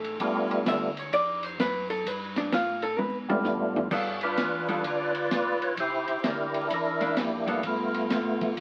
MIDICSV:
0, 0, Header, 1, 5, 480
1, 0, Start_track
1, 0, Tempo, 465477
1, 202, Time_signature, 4, 2, 24, 8
1, 8869, End_track
2, 0, Start_track
2, 0, Title_t, "Hollow-body jazz guitar"
2, 0, Program_c, 0, 26
2, 0, Note_on_c, 0, 57, 65
2, 0, Note_on_c, 0, 69, 76
2, 174, Note_off_c, 0, 69, 0
2, 178, Note_off_c, 0, 57, 0
2, 703, Note_on_c, 0, 76, 90
2, 1020, Note_off_c, 0, 76, 0
2, 1020, Note_on_c, 0, 73, 92
2, 1167, Note_off_c, 0, 73, 0
2, 1171, Note_on_c, 0, 74, 90
2, 1490, Note_off_c, 0, 74, 0
2, 1490, Note_on_c, 0, 72, 91
2, 1642, Note_off_c, 0, 72, 0
2, 1653, Note_on_c, 0, 71, 74
2, 1949, Note_off_c, 0, 71, 0
2, 1960, Note_on_c, 0, 69, 78
2, 2142, Note_off_c, 0, 69, 0
2, 2142, Note_on_c, 0, 71, 94
2, 2434, Note_off_c, 0, 71, 0
2, 2450, Note_on_c, 0, 62, 66
2, 2601, Note_off_c, 0, 62, 0
2, 2617, Note_on_c, 0, 65, 81
2, 2911, Note_off_c, 0, 65, 0
2, 2916, Note_on_c, 0, 69, 83
2, 3080, Note_off_c, 0, 69, 0
2, 3080, Note_on_c, 0, 71, 86
2, 3267, Note_off_c, 0, 71, 0
2, 4033, Note_on_c, 0, 55, 64
2, 4042, Note_on_c, 0, 59, 59
2, 4047, Note_on_c, 0, 65, 65
2, 4047, Note_on_c, 0, 69, 68
2, 4316, Note_off_c, 0, 55, 0
2, 4320, Note_off_c, 0, 59, 0
2, 4323, Note_off_c, 0, 65, 0
2, 4323, Note_off_c, 0, 69, 0
2, 4833, Note_on_c, 0, 59, 63
2, 4836, Note_on_c, 0, 55, 62
2, 4843, Note_on_c, 0, 65, 67
2, 4844, Note_on_c, 0, 69, 67
2, 4980, Note_off_c, 0, 59, 0
2, 4982, Note_off_c, 0, 55, 0
2, 4985, Note_off_c, 0, 65, 0
2, 4985, Note_off_c, 0, 69, 0
2, 7228, Note_on_c, 0, 58, 57
2, 7238, Note_on_c, 0, 62, 59
2, 7244, Note_on_c, 0, 64, 67
2, 7379, Note_off_c, 0, 58, 0
2, 7384, Note_off_c, 0, 62, 0
2, 7387, Note_off_c, 0, 64, 0
2, 7701, Note_on_c, 0, 55, 54
2, 7712, Note_on_c, 0, 65, 59
2, 7717, Note_on_c, 0, 59, 63
2, 7719, Note_on_c, 0, 69, 60
2, 7856, Note_off_c, 0, 55, 0
2, 7862, Note_off_c, 0, 65, 0
2, 7864, Note_off_c, 0, 59, 0
2, 7865, Note_off_c, 0, 69, 0
2, 8869, End_track
3, 0, Start_track
3, 0, Title_t, "Tonewheel organ"
3, 0, Program_c, 1, 16
3, 210, Note_on_c, 1, 55, 68
3, 215, Note_on_c, 1, 57, 58
3, 215, Note_on_c, 1, 62, 61
3, 217, Note_on_c, 1, 59, 61
3, 227, Note_on_c, 1, 65, 76
3, 935, Note_off_c, 1, 55, 0
3, 938, Note_off_c, 1, 57, 0
3, 938, Note_off_c, 1, 62, 0
3, 939, Note_off_c, 1, 59, 0
3, 944, Note_off_c, 1, 65, 0
3, 3389, Note_on_c, 1, 55, 75
3, 3394, Note_on_c, 1, 57, 68
3, 3396, Note_on_c, 1, 59, 69
3, 3397, Note_on_c, 1, 65, 80
3, 3399, Note_on_c, 1, 62, 68
3, 4001, Note_off_c, 1, 55, 0
3, 4004, Note_off_c, 1, 57, 0
3, 4005, Note_off_c, 1, 59, 0
3, 4005, Note_off_c, 1, 65, 0
3, 4006, Note_off_c, 1, 62, 0
3, 4364, Note_on_c, 1, 71, 88
3, 4374, Note_on_c, 1, 62, 67
3, 4374, Note_on_c, 1, 65, 67
3, 5009, Note_off_c, 1, 71, 0
3, 5014, Note_off_c, 1, 65, 0
3, 5021, Note_on_c, 1, 74, 91
3, 5022, Note_on_c, 1, 71, 65
3, 5026, Note_on_c, 1, 65, 68
3, 5280, Note_off_c, 1, 62, 0
3, 5811, Note_on_c, 1, 73, 91
3, 5825, Note_off_c, 1, 74, 0
3, 5927, Note_off_c, 1, 71, 0
3, 5930, Note_off_c, 1, 65, 0
3, 5955, Note_off_c, 1, 73, 0
3, 5978, Note_on_c, 1, 72, 97
3, 5980, Note_on_c, 1, 64, 68
3, 5982, Note_on_c, 1, 67, 66
3, 6452, Note_off_c, 1, 64, 0
3, 6459, Note_on_c, 1, 70, 91
3, 6461, Note_off_c, 1, 72, 0
3, 6464, Note_on_c, 1, 64, 64
3, 6468, Note_on_c, 1, 62, 65
3, 6889, Note_off_c, 1, 67, 0
3, 6895, Note_off_c, 1, 70, 0
3, 6937, Note_off_c, 1, 64, 0
3, 6939, Note_off_c, 1, 62, 0
3, 6947, Note_on_c, 1, 70, 83
3, 6949, Note_on_c, 1, 64, 64
3, 6951, Note_on_c, 1, 62, 62
3, 7380, Note_off_c, 1, 70, 0
3, 7408, Note_off_c, 1, 64, 0
3, 7418, Note_on_c, 1, 58, 57
3, 7421, Note_on_c, 1, 64, 58
3, 7424, Note_on_c, 1, 67, 77
3, 7855, Note_off_c, 1, 62, 0
3, 7856, Note_off_c, 1, 58, 0
3, 7857, Note_off_c, 1, 64, 0
3, 7859, Note_off_c, 1, 67, 0
3, 7907, Note_on_c, 1, 57, 58
3, 7907, Note_on_c, 1, 59, 59
3, 7908, Note_on_c, 1, 65, 82
3, 8696, Note_off_c, 1, 65, 0
3, 8708, Note_on_c, 1, 65, 76
3, 8814, Note_off_c, 1, 57, 0
3, 8814, Note_off_c, 1, 59, 0
3, 8862, Note_off_c, 1, 65, 0
3, 8869, End_track
4, 0, Start_track
4, 0, Title_t, "Tonewheel organ"
4, 0, Program_c, 2, 16
4, 0, Note_on_c, 2, 33, 96
4, 187, Note_off_c, 2, 33, 0
4, 199, Note_on_c, 2, 35, 81
4, 665, Note_off_c, 2, 35, 0
4, 678, Note_on_c, 2, 38, 90
4, 1144, Note_off_c, 2, 38, 0
4, 1161, Note_on_c, 2, 41, 82
4, 1625, Note_off_c, 2, 41, 0
4, 1638, Note_on_c, 2, 42, 91
4, 2102, Note_off_c, 2, 42, 0
4, 2116, Note_on_c, 2, 43, 81
4, 2581, Note_off_c, 2, 43, 0
4, 2592, Note_on_c, 2, 45, 92
4, 3059, Note_off_c, 2, 45, 0
4, 3061, Note_on_c, 2, 47, 86
4, 3533, Note_off_c, 2, 47, 0
4, 3547, Note_on_c, 2, 45, 97
4, 4016, Note_off_c, 2, 45, 0
4, 4030, Note_on_c, 2, 43, 78
4, 4497, Note_off_c, 2, 43, 0
4, 4512, Note_on_c, 2, 40, 87
4, 4979, Note_off_c, 2, 40, 0
4, 4994, Note_on_c, 2, 38, 82
4, 5460, Note_off_c, 2, 38, 0
4, 5472, Note_on_c, 2, 35, 89
4, 5939, Note_off_c, 2, 35, 0
4, 5953, Note_on_c, 2, 36, 79
4, 6246, Note_off_c, 2, 36, 0
4, 6269, Note_on_c, 2, 36, 39
4, 6352, Note_off_c, 2, 36, 0
4, 6432, Note_on_c, 2, 38, 85
4, 6900, Note_off_c, 2, 38, 0
4, 6912, Note_on_c, 2, 40, 77
4, 7381, Note_off_c, 2, 40, 0
4, 7391, Note_on_c, 2, 41, 91
4, 7861, Note_off_c, 2, 41, 0
4, 7872, Note_on_c, 2, 43, 81
4, 8342, Note_off_c, 2, 43, 0
4, 8354, Note_on_c, 2, 45, 93
4, 8824, Note_off_c, 2, 45, 0
4, 8837, Note_on_c, 2, 47, 79
4, 8869, Note_off_c, 2, 47, 0
4, 8869, End_track
5, 0, Start_track
5, 0, Title_t, "Drums"
5, 44, Note_on_c, 9, 51, 48
5, 148, Note_off_c, 9, 51, 0
5, 204, Note_on_c, 9, 51, 61
5, 205, Note_on_c, 9, 36, 25
5, 307, Note_off_c, 9, 51, 0
5, 308, Note_off_c, 9, 36, 0
5, 524, Note_on_c, 9, 51, 45
5, 627, Note_off_c, 9, 51, 0
5, 682, Note_on_c, 9, 44, 59
5, 682, Note_on_c, 9, 51, 72
5, 683, Note_on_c, 9, 36, 25
5, 684, Note_on_c, 9, 38, 72
5, 785, Note_off_c, 9, 44, 0
5, 785, Note_off_c, 9, 51, 0
5, 786, Note_off_c, 9, 36, 0
5, 787, Note_off_c, 9, 38, 0
5, 999, Note_on_c, 9, 51, 47
5, 1102, Note_off_c, 9, 51, 0
5, 1163, Note_on_c, 9, 51, 64
5, 1164, Note_on_c, 9, 36, 21
5, 1266, Note_off_c, 9, 51, 0
5, 1267, Note_off_c, 9, 36, 0
5, 1472, Note_on_c, 9, 51, 49
5, 1575, Note_off_c, 9, 51, 0
5, 1641, Note_on_c, 9, 36, 19
5, 1645, Note_on_c, 9, 44, 57
5, 1645, Note_on_c, 9, 51, 69
5, 1647, Note_on_c, 9, 38, 72
5, 1744, Note_off_c, 9, 36, 0
5, 1748, Note_off_c, 9, 44, 0
5, 1748, Note_off_c, 9, 51, 0
5, 1750, Note_off_c, 9, 38, 0
5, 1958, Note_on_c, 9, 51, 48
5, 2061, Note_off_c, 9, 51, 0
5, 2121, Note_on_c, 9, 36, 21
5, 2130, Note_on_c, 9, 51, 64
5, 2225, Note_off_c, 9, 36, 0
5, 2233, Note_off_c, 9, 51, 0
5, 2434, Note_on_c, 9, 51, 48
5, 2436, Note_on_c, 9, 38, 42
5, 2537, Note_off_c, 9, 51, 0
5, 2539, Note_off_c, 9, 38, 0
5, 2597, Note_on_c, 9, 36, 19
5, 2601, Note_on_c, 9, 44, 50
5, 2601, Note_on_c, 9, 51, 72
5, 2603, Note_on_c, 9, 38, 75
5, 2700, Note_off_c, 9, 36, 0
5, 2705, Note_off_c, 9, 44, 0
5, 2705, Note_off_c, 9, 51, 0
5, 2707, Note_off_c, 9, 38, 0
5, 2909, Note_on_c, 9, 51, 47
5, 3012, Note_off_c, 9, 51, 0
5, 3078, Note_on_c, 9, 48, 53
5, 3181, Note_off_c, 9, 48, 0
5, 3399, Note_on_c, 9, 48, 73
5, 3502, Note_off_c, 9, 48, 0
5, 3552, Note_on_c, 9, 44, 63
5, 3554, Note_on_c, 9, 43, 66
5, 3655, Note_off_c, 9, 44, 0
5, 3657, Note_off_c, 9, 43, 0
5, 3881, Note_on_c, 9, 43, 92
5, 3984, Note_off_c, 9, 43, 0
5, 4031, Note_on_c, 9, 49, 70
5, 4036, Note_on_c, 9, 36, 71
5, 4134, Note_off_c, 9, 49, 0
5, 4139, Note_off_c, 9, 36, 0
5, 4340, Note_on_c, 9, 51, 43
5, 4443, Note_off_c, 9, 51, 0
5, 4511, Note_on_c, 9, 44, 58
5, 4511, Note_on_c, 9, 51, 67
5, 4513, Note_on_c, 9, 38, 66
5, 4516, Note_on_c, 9, 36, 20
5, 4614, Note_off_c, 9, 44, 0
5, 4614, Note_off_c, 9, 51, 0
5, 4616, Note_off_c, 9, 38, 0
5, 4619, Note_off_c, 9, 36, 0
5, 4831, Note_on_c, 9, 51, 43
5, 4934, Note_off_c, 9, 51, 0
5, 4992, Note_on_c, 9, 51, 61
5, 4998, Note_on_c, 9, 36, 20
5, 5095, Note_off_c, 9, 51, 0
5, 5101, Note_off_c, 9, 36, 0
5, 5306, Note_on_c, 9, 51, 46
5, 5409, Note_off_c, 9, 51, 0
5, 5476, Note_on_c, 9, 44, 59
5, 5476, Note_on_c, 9, 51, 68
5, 5479, Note_on_c, 9, 36, 26
5, 5479, Note_on_c, 9, 38, 66
5, 5580, Note_off_c, 9, 44, 0
5, 5580, Note_off_c, 9, 51, 0
5, 5582, Note_off_c, 9, 38, 0
5, 5583, Note_off_c, 9, 36, 0
5, 5793, Note_on_c, 9, 51, 43
5, 5896, Note_off_c, 9, 51, 0
5, 5952, Note_on_c, 9, 51, 62
5, 5958, Note_on_c, 9, 36, 26
5, 6056, Note_off_c, 9, 51, 0
5, 6061, Note_off_c, 9, 36, 0
5, 6265, Note_on_c, 9, 51, 43
5, 6368, Note_off_c, 9, 51, 0
5, 6431, Note_on_c, 9, 44, 57
5, 6431, Note_on_c, 9, 51, 65
5, 6433, Note_on_c, 9, 38, 67
5, 6436, Note_on_c, 9, 36, 23
5, 6535, Note_off_c, 9, 44, 0
5, 6535, Note_off_c, 9, 51, 0
5, 6537, Note_off_c, 9, 38, 0
5, 6539, Note_off_c, 9, 36, 0
5, 6746, Note_on_c, 9, 51, 44
5, 6849, Note_off_c, 9, 51, 0
5, 6913, Note_on_c, 9, 51, 59
5, 6917, Note_on_c, 9, 36, 22
5, 7016, Note_off_c, 9, 51, 0
5, 7020, Note_off_c, 9, 36, 0
5, 7224, Note_on_c, 9, 51, 45
5, 7327, Note_off_c, 9, 51, 0
5, 7390, Note_on_c, 9, 44, 50
5, 7390, Note_on_c, 9, 51, 63
5, 7392, Note_on_c, 9, 38, 67
5, 7396, Note_on_c, 9, 36, 19
5, 7493, Note_off_c, 9, 44, 0
5, 7493, Note_off_c, 9, 51, 0
5, 7495, Note_off_c, 9, 38, 0
5, 7499, Note_off_c, 9, 36, 0
5, 7708, Note_on_c, 9, 51, 44
5, 7811, Note_off_c, 9, 51, 0
5, 7869, Note_on_c, 9, 51, 60
5, 7876, Note_on_c, 9, 36, 25
5, 7972, Note_off_c, 9, 51, 0
5, 7979, Note_off_c, 9, 36, 0
5, 8191, Note_on_c, 9, 51, 43
5, 8294, Note_off_c, 9, 51, 0
5, 8356, Note_on_c, 9, 44, 63
5, 8356, Note_on_c, 9, 51, 67
5, 8358, Note_on_c, 9, 38, 67
5, 8360, Note_on_c, 9, 36, 21
5, 8459, Note_off_c, 9, 44, 0
5, 8459, Note_off_c, 9, 51, 0
5, 8461, Note_off_c, 9, 38, 0
5, 8463, Note_off_c, 9, 36, 0
5, 8674, Note_on_c, 9, 51, 46
5, 8675, Note_on_c, 9, 36, 54
5, 8777, Note_off_c, 9, 51, 0
5, 8778, Note_off_c, 9, 36, 0
5, 8837, Note_on_c, 9, 51, 59
5, 8869, Note_off_c, 9, 51, 0
5, 8869, End_track
0, 0, End_of_file